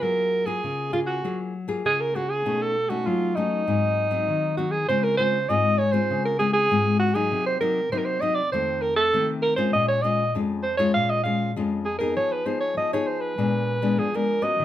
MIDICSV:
0, 0, Header, 1, 3, 480
1, 0, Start_track
1, 0, Tempo, 607287
1, 16, Time_signature, 4, 2, 24, 8
1, 11579, End_track
2, 0, Start_track
2, 0, Title_t, "Alto saxophone"
2, 0, Program_c, 0, 65
2, 19, Note_on_c, 0, 70, 96
2, 363, Note_on_c, 0, 68, 79
2, 374, Note_off_c, 0, 70, 0
2, 730, Note_off_c, 0, 68, 0
2, 734, Note_on_c, 0, 65, 70
2, 789, Note_off_c, 0, 65, 0
2, 843, Note_on_c, 0, 66, 66
2, 1097, Note_off_c, 0, 66, 0
2, 1468, Note_on_c, 0, 68, 94
2, 1585, Note_on_c, 0, 70, 84
2, 1596, Note_off_c, 0, 68, 0
2, 1699, Note_on_c, 0, 66, 84
2, 1711, Note_off_c, 0, 70, 0
2, 1812, Note_on_c, 0, 68, 92
2, 1824, Note_off_c, 0, 66, 0
2, 2071, Note_on_c, 0, 69, 92
2, 2083, Note_off_c, 0, 68, 0
2, 2286, Note_on_c, 0, 66, 80
2, 2297, Note_off_c, 0, 69, 0
2, 2420, Note_on_c, 0, 65, 81
2, 2431, Note_off_c, 0, 66, 0
2, 2651, Note_on_c, 0, 63, 84
2, 2662, Note_off_c, 0, 65, 0
2, 3606, Note_off_c, 0, 63, 0
2, 3611, Note_on_c, 0, 66, 76
2, 3723, Note_on_c, 0, 68, 78
2, 3735, Note_off_c, 0, 66, 0
2, 3851, Note_off_c, 0, 68, 0
2, 3857, Note_on_c, 0, 72, 98
2, 3980, Note_on_c, 0, 70, 90
2, 3992, Note_off_c, 0, 72, 0
2, 4082, Note_off_c, 0, 70, 0
2, 4086, Note_on_c, 0, 72, 98
2, 4337, Note_on_c, 0, 75, 99
2, 4349, Note_off_c, 0, 72, 0
2, 4568, Note_on_c, 0, 73, 88
2, 4580, Note_off_c, 0, 75, 0
2, 4678, Note_on_c, 0, 72, 91
2, 4690, Note_off_c, 0, 73, 0
2, 4929, Note_off_c, 0, 72, 0
2, 4941, Note_on_c, 0, 70, 76
2, 5044, Note_off_c, 0, 70, 0
2, 5048, Note_on_c, 0, 68, 85
2, 5158, Note_off_c, 0, 68, 0
2, 5163, Note_on_c, 0, 68, 96
2, 5505, Note_off_c, 0, 68, 0
2, 5527, Note_on_c, 0, 66, 82
2, 5645, Note_on_c, 0, 68, 91
2, 5657, Note_off_c, 0, 66, 0
2, 5892, Note_off_c, 0, 68, 0
2, 5899, Note_on_c, 0, 72, 94
2, 6005, Note_off_c, 0, 72, 0
2, 6010, Note_on_c, 0, 70, 84
2, 6237, Note_off_c, 0, 70, 0
2, 6259, Note_on_c, 0, 72, 79
2, 6303, Note_on_c, 0, 70, 69
2, 6315, Note_off_c, 0, 72, 0
2, 6361, Note_on_c, 0, 72, 89
2, 6373, Note_off_c, 0, 70, 0
2, 6487, Note_on_c, 0, 75, 88
2, 6499, Note_off_c, 0, 72, 0
2, 6597, Note_on_c, 0, 74, 89
2, 6609, Note_off_c, 0, 75, 0
2, 6728, Note_off_c, 0, 74, 0
2, 6733, Note_on_c, 0, 72, 86
2, 6967, Note_on_c, 0, 70, 88
2, 6979, Note_off_c, 0, 72, 0
2, 7077, Note_off_c, 0, 70, 0
2, 7082, Note_on_c, 0, 69, 91
2, 7342, Note_off_c, 0, 69, 0
2, 7444, Note_on_c, 0, 70, 83
2, 7552, Note_off_c, 0, 70, 0
2, 7556, Note_on_c, 0, 72, 85
2, 7678, Note_off_c, 0, 72, 0
2, 7691, Note_on_c, 0, 75, 97
2, 7806, Note_off_c, 0, 75, 0
2, 7811, Note_on_c, 0, 73, 89
2, 7919, Note_on_c, 0, 75, 87
2, 7930, Note_off_c, 0, 73, 0
2, 8168, Note_off_c, 0, 75, 0
2, 8400, Note_on_c, 0, 72, 82
2, 8508, Note_off_c, 0, 72, 0
2, 8513, Note_on_c, 0, 73, 86
2, 8635, Note_off_c, 0, 73, 0
2, 8645, Note_on_c, 0, 77, 95
2, 8770, Note_on_c, 0, 75, 89
2, 8782, Note_off_c, 0, 77, 0
2, 8873, Note_off_c, 0, 75, 0
2, 8878, Note_on_c, 0, 77, 81
2, 9109, Note_off_c, 0, 77, 0
2, 9367, Note_on_c, 0, 68, 75
2, 9467, Note_off_c, 0, 68, 0
2, 9472, Note_on_c, 0, 70, 77
2, 9594, Note_off_c, 0, 70, 0
2, 9615, Note_on_c, 0, 73, 87
2, 9737, Note_on_c, 0, 71, 80
2, 9749, Note_off_c, 0, 73, 0
2, 9847, Note_on_c, 0, 72, 84
2, 9859, Note_off_c, 0, 71, 0
2, 9957, Note_off_c, 0, 72, 0
2, 9961, Note_on_c, 0, 73, 83
2, 10079, Note_off_c, 0, 73, 0
2, 10095, Note_on_c, 0, 75, 87
2, 10206, Note_off_c, 0, 75, 0
2, 10219, Note_on_c, 0, 73, 80
2, 10329, Note_on_c, 0, 72, 78
2, 10341, Note_off_c, 0, 73, 0
2, 10437, Note_on_c, 0, 71, 85
2, 10449, Note_off_c, 0, 72, 0
2, 11057, Note_on_c, 0, 68, 74
2, 11069, Note_off_c, 0, 71, 0
2, 11186, Note_on_c, 0, 70, 80
2, 11198, Note_off_c, 0, 68, 0
2, 11406, Note_on_c, 0, 75, 97
2, 11418, Note_off_c, 0, 70, 0
2, 11579, Note_off_c, 0, 75, 0
2, 11579, End_track
3, 0, Start_track
3, 0, Title_t, "Nylon-string guitar"
3, 0, Program_c, 1, 24
3, 0, Note_on_c, 1, 58, 62
3, 0, Note_on_c, 1, 65, 62
3, 0, Note_on_c, 1, 68, 71
3, 18, Note_on_c, 1, 54, 71
3, 332, Note_off_c, 1, 58, 0
3, 333, Note_off_c, 1, 65, 0
3, 335, Note_off_c, 1, 68, 0
3, 365, Note_on_c, 1, 58, 58
3, 372, Note_on_c, 1, 65, 61
3, 374, Note_on_c, 1, 68, 60
3, 474, Note_off_c, 1, 54, 0
3, 505, Note_on_c, 1, 49, 68
3, 693, Note_off_c, 1, 58, 0
3, 695, Note_off_c, 1, 65, 0
3, 697, Note_off_c, 1, 68, 0
3, 730, Note_on_c, 1, 58, 52
3, 736, Note_on_c, 1, 65, 56
3, 737, Note_on_c, 1, 68, 63
3, 936, Note_off_c, 1, 58, 0
3, 937, Note_off_c, 1, 65, 0
3, 939, Note_off_c, 1, 68, 0
3, 957, Note_off_c, 1, 49, 0
3, 981, Note_on_c, 1, 54, 66
3, 985, Note_on_c, 1, 58, 49
3, 986, Note_on_c, 1, 65, 54
3, 991, Note_on_c, 1, 68, 52
3, 1205, Note_off_c, 1, 58, 0
3, 1207, Note_off_c, 1, 65, 0
3, 1208, Note_off_c, 1, 68, 0
3, 1326, Note_on_c, 1, 58, 57
3, 1331, Note_on_c, 1, 65, 57
3, 1333, Note_on_c, 1, 68, 71
3, 1436, Note_off_c, 1, 54, 0
3, 1464, Note_on_c, 1, 49, 68
3, 1654, Note_off_c, 1, 58, 0
3, 1656, Note_off_c, 1, 65, 0
3, 1656, Note_off_c, 1, 68, 0
3, 1700, Note_on_c, 1, 58, 45
3, 1703, Note_on_c, 1, 65, 51
3, 1706, Note_on_c, 1, 68, 57
3, 1901, Note_off_c, 1, 58, 0
3, 1901, Note_off_c, 1, 65, 0
3, 1904, Note_off_c, 1, 68, 0
3, 1917, Note_off_c, 1, 49, 0
3, 1940, Note_on_c, 1, 47, 67
3, 1942, Note_on_c, 1, 57, 54
3, 1944, Note_on_c, 1, 61, 50
3, 1947, Note_on_c, 1, 63, 61
3, 2165, Note_off_c, 1, 57, 0
3, 2166, Note_off_c, 1, 61, 0
3, 2168, Note_off_c, 1, 63, 0
3, 2291, Note_on_c, 1, 57, 58
3, 2294, Note_on_c, 1, 61, 54
3, 2296, Note_on_c, 1, 63, 52
3, 2395, Note_off_c, 1, 47, 0
3, 2424, Note_on_c, 1, 54, 69
3, 2616, Note_off_c, 1, 57, 0
3, 2618, Note_off_c, 1, 61, 0
3, 2618, Note_off_c, 1, 63, 0
3, 2661, Note_on_c, 1, 57, 50
3, 2664, Note_on_c, 1, 61, 59
3, 2668, Note_on_c, 1, 63, 60
3, 2861, Note_off_c, 1, 57, 0
3, 2863, Note_off_c, 1, 61, 0
3, 2864, Note_off_c, 1, 63, 0
3, 2877, Note_off_c, 1, 54, 0
3, 2903, Note_on_c, 1, 44, 66
3, 2905, Note_on_c, 1, 54, 51
3, 2907, Note_on_c, 1, 60, 51
3, 2911, Note_on_c, 1, 63, 54
3, 3222, Note_off_c, 1, 54, 0
3, 3224, Note_off_c, 1, 60, 0
3, 3226, Note_off_c, 1, 63, 0
3, 3247, Note_on_c, 1, 54, 53
3, 3249, Note_on_c, 1, 60, 56
3, 3256, Note_on_c, 1, 63, 60
3, 3357, Note_off_c, 1, 44, 0
3, 3384, Note_on_c, 1, 51, 64
3, 3574, Note_off_c, 1, 54, 0
3, 3576, Note_off_c, 1, 60, 0
3, 3577, Note_off_c, 1, 63, 0
3, 3617, Note_on_c, 1, 54, 52
3, 3620, Note_on_c, 1, 60, 49
3, 3626, Note_on_c, 1, 63, 58
3, 3759, Note_off_c, 1, 54, 0
3, 3761, Note_off_c, 1, 60, 0
3, 3762, Note_off_c, 1, 63, 0
3, 3837, Note_off_c, 1, 51, 0
3, 3866, Note_on_c, 1, 49, 68
3, 3867, Note_on_c, 1, 56, 53
3, 3869, Note_on_c, 1, 60, 58
3, 3873, Note_on_c, 1, 65, 57
3, 4064, Note_off_c, 1, 56, 0
3, 4065, Note_off_c, 1, 60, 0
3, 4067, Note_off_c, 1, 65, 0
3, 4100, Note_on_c, 1, 56, 56
3, 4102, Note_on_c, 1, 60, 50
3, 4108, Note_on_c, 1, 65, 60
3, 4240, Note_off_c, 1, 56, 0
3, 4242, Note_off_c, 1, 60, 0
3, 4243, Note_off_c, 1, 65, 0
3, 4318, Note_off_c, 1, 49, 0
3, 4341, Note_on_c, 1, 44, 68
3, 4344, Note_on_c, 1, 56, 58
3, 4348, Note_on_c, 1, 60, 52
3, 4350, Note_on_c, 1, 65, 58
3, 4566, Note_off_c, 1, 56, 0
3, 4567, Note_off_c, 1, 60, 0
3, 4569, Note_off_c, 1, 65, 0
3, 4688, Note_on_c, 1, 56, 59
3, 4693, Note_on_c, 1, 60, 63
3, 4693, Note_on_c, 1, 65, 69
3, 4797, Note_off_c, 1, 44, 0
3, 4823, Note_on_c, 1, 49, 63
3, 5015, Note_off_c, 1, 56, 0
3, 5016, Note_off_c, 1, 60, 0
3, 5018, Note_off_c, 1, 65, 0
3, 5055, Note_on_c, 1, 56, 52
3, 5060, Note_on_c, 1, 60, 49
3, 5063, Note_on_c, 1, 65, 56
3, 5259, Note_off_c, 1, 56, 0
3, 5261, Note_off_c, 1, 60, 0
3, 5263, Note_off_c, 1, 65, 0
3, 5277, Note_off_c, 1, 49, 0
3, 5301, Note_on_c, 1, 44, 68
3, 5305, Note_on_c, 1, 56, 51
3, 5309, Note_on_c, 1, 60, 51
3, 5310, Note_on_c, 1, 65, 58
3, 5623, Note_off_c, 1, 56, 0
3, 5624, Note_off_c, 1, 60, 0
3, 5626, Note_off_c, 1, 65, 0
3, 5649, Note_on_c, 1, 54, 58
3, 5653, Note_on_c, 1, 58, 60
3, 5656, Note_on_c, 1, 63, 64
3, 5757, Note_off_c, 1, 44, 0
3, 5782, Note_on_c, 1, 48, 68
3, 5976, Note_off_c, 1, 54, 0
3, 5977, Note_off_c, 1, 58, 0
3, 5979, Note_off_c, 1, 63, 0
3, 6014, Note_on_c, 1, 54, 56
3, 6018, Note_on_c, 1, 58, 63
3, 6021, Note_on_c, 1, 63, 57
3, 6158, Note_off_c, 1, 54, 0
3, 6158, Note_off_c, 1, 58, 0
3, 6161, Note_off_c, 1, 63, 0
3, 6236, Note_off_c, 1, 48, 0
3, 6260, Note_on_c, 1, 48, 65
3, 6262, Note_on_c, 1, 54, 54
3, 6263, Note_on_c, 1, 58, 55
3, 6269, Note_on_c, 1, 63, 65
3, 6461, Note_off_c, 1, 54, 0
3, 6463, Note_off_c, 1, 58, 0
3, 6464, Note_off_c, 1, 63, 0
3, 6495, Note_on_c, 1, 54, 58
3, 6498, Note_on_c, 1, 58, 53
3, 6503, Note_on_c, 1, 63, 64
3, 6638, Note_off_c, 1, 54, 0
3, 6640, Note_off_c, 1, 58, 0
3, 6641, Note_off_c, 1, 63, 0
3, 6715, Note_off_c, 1, 48, 0
3, 6743, Note_on_c, 1, 51, 49
3, 6744, Note_on_c, 1, 41, 63
3, 6747, Note_on_c, 1, 57, 56
3, 6750, Note_on_c, 1, 60, 58
3, 7049, Note_off_c, 1, 51, 0
3, 7052, Note_off_c, 1, 57, 0
3, 7053, Note_off_c, 1, 60, 0
3, 7197, Note_off_c, 1, 41, 0
3, 7217, Note_on_c, 1, 48, 70
3, 7220, Note_on_c, 1, 51, 60
3, 7223, Note_on_c, 1, 57, 56
3, 7227, Note_on_c, 1, 60, 66
3, 7540, Note_off_c, 1, 51, 0
3, 7542, Note_off_c, 1, 57, 0
3, 7544, Note_off_c, 1, 60, 0
3, 7566, Note_on_c, 1, 56, 65
3, 7572, Note_on_c, 1, 61, 63
3, 7573, Note_on_c, 1, 65, 72
3, 7674, Note_off_c, 1, 48, 0
3, 7704, Note_on_c, 1, 46, 75
3, 7894, Note_off_c, 1, 56, 0
3, 7895, Note_off_c, 1, 61, 0
3, 7897, Note_off_c, 1, 65, 0
3, 7935, Note_on_c, 1, 56, 57
3, 7940, Note_on_c, 1, 61, 57
3, 7943, Note_on_c, 1, 65, 61
3, 8077, Note_off_c, 1, 56, 0
3, 8080, Note_off_c, 1, 61, 0
3, 8081, Note_off_c, 1, 65, 0
3, 8156, Note_off_c, 1, 46, 0
3, 8178, Note_on_c, 1, 41, 74
3, 8181, Note_on_c, 1, 56, 58
3, 8182, Note_on_c, 1, 61, 53
3, 8189, Note_on_c, 1, 65, 61
3, 8404, Note_off_c, 1, 56, 0
3, 8405, Note_off_c, 1, 61, 0
3, 8407, Note_off_c, 1, 65, 0
3, 8527, Note_on_c, 1, 56, 68
3, 8530, Note_on_c, 1, 61, 62
3, 8535, Note_on_c, 1, 65, 69
3, 8634, Note_off_c, 1, 41, 0
3, 8658, Note_on_c, 1, 46, 68
3, 8853, Note_off_c, 1, 56, 0
3, 8855, Note_off_c, 1, 61, 0
3, 8856, Note_off_c, 1, 65, 0
3, 8891, Note_on_c, 1, 56, 55
3, 8894, Note_on_c, 1, 61, 53
3, 8898, Note_on_c, 1, 65, 63
3, 9095, Note_off_c, 1, 56, 0
3, 9096, Note_off_c, 1, 61, 0
3, 9099, Note_off_c, 1, 65, 0
3, 9113, Note_off_c, 1, 46, 0
3, 9141, Note_on_c, 1, 41, 67
3, 9141, Note_on_c, 1, 56, 55
3, 9147, Note_on_c, 1, 61, 57
3, 9147, Note_on_c, 1, 65, 55
3, 9363, Note_off_c, 1, 56, 0
3, 9364, Note_off_c, 1, 61, 0
3, 9366, Note_off_c, 1, 65, 0
3, 9485, Note_on_c, 1, 59, 55
3, 9487, Note_on_c, 1, 63, 57
3, 9492, Note_on_c, 1, 68, 71
3, 9594, Note_off_c, 1, 41, 0
3, 9615, Note_on_c, 1, 53, 72
3, 9811, Note_off_c, 1, 59, 0
3, 9813, Note_off_c, 1, 63, 0
3, 9814, Note_off_c, 1, 68, 0
3, 9844, Note_on_c, 1, 59, 53
3, 9849, Note_on_c, 1, 63, 51
3, 9852, Note_on_c, 1, 68, 58
3, 10070, Note_off_c, 1, 53, 0
3, 10093, Note_on_c, 1, 53, 67
3, 10171, Note_off_c, 1, 59, 0
3, 10173, Note_off_c, 1, 63, 0
3, 10174, Note_off_c, 1, 68, 0
3, 10219, Note_on_c, 1, 59, 61
3, 10222, Note_on_c, 1, 63, 66
3, 10228, Note_on_c, 1, 68, 76
3, 10538, Note_off_c, 1, 59, 0
3, 10540, Note_off_c, 1, 63, 0
3, 10541, Note_off_c, 1, 68, 0
3, 10549, Note_off_c, 1, 53, 0
3, 10574, Note_on_c, 1, 46, 64
3, 10577, Note_on_c, 1, 56, 50
3, 10581, Note_on_c, 1, 59, 53
3, 10584, Note_on_c, 1, 62, 57
3, 10896, Note_off_c, 1, 56, 0
3, 10897, Note_off_c, 1, 59, 0
3, 10900, Note_off_c, 1, 62, 0
3, 10924, Note_on_c, 1, 56, 56
3, 10927, Note_on_c, 1, 59, 56
3, 10929, Note_on_c, 1, 62, 61
3, 11030, Note_off_c, 1, 46, 0
3, 11052, Note_on_c, 1, 53, 65
3, 11130, Note_off_c, 1, 56, 0
3, 11130, Note_off_c, 1, 59, 0
3, 11132, Note_off_c, 1, 62, 0
3, 11179, Note_on_c, 1, 56, 53
3, 11182, Note_on_c, 1, 59, 57
3, 11185, Note_on_c, 1, 62, 55
3, 11377, Note_off_c, 1, 56, 0
3, 11378, Note_off_c, 1, 59, 0
3, 11380, Note_off_c, 1, 62, 0
3, 11397, Note_on_c, 1, 58, 60
3, 11400, Note_on_c, 1, 61, 60
3, 11406, Note_on_c, 1, 66, 59
3, 11507, Note_off_c, 1, 53, 0
3, 11536, Note_on_c, 1, 51, 70
3, 11579, Note_off_c, 1, 51, 0
3, 11579, Note_off_c, 1, 58, 0
3, 11579, Note_off_c, 1, 61, 0
3, 11579, Note_off_c, 1, 66, 0
3, 11579, End_track
0, 0, End_of_file